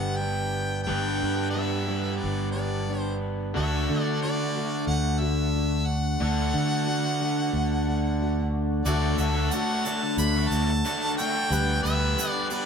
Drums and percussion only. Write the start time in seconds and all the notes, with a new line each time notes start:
8.86 shaker
9.18 shaker
9.51 shaker
9.85 shaker
10.18 shaker
10.51 shaker
10.85 shaker
11.19 shaker
11.52 shaker
11.86 shaker
12.19 shaker
12.50 shaker